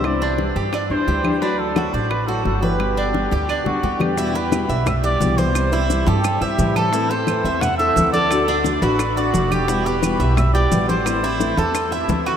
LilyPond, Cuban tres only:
\new Staff \with { instrumentName = "Cuban tres" } { \time 4/4 \key e \minor \tempo 4 = 174 c''8 d'4 g'8 d'4 g'4 | d'4 fis'8 d''4 fis'4 b'8~ | b'8 d'4 g'8 d'4 g'4 | e'8 g'4 e''4 g'4 c''8~ |
c''8 e'4 g'4 e''4 a'8 | e'8 a'4 e''4 a'4 a'8~ | a'8 d'4 fis'4 d''4 g'8 | e'8 g'4 e''4 g'4 c''8~ |
c''8 e'4 a'4 e''4 fis'8 | }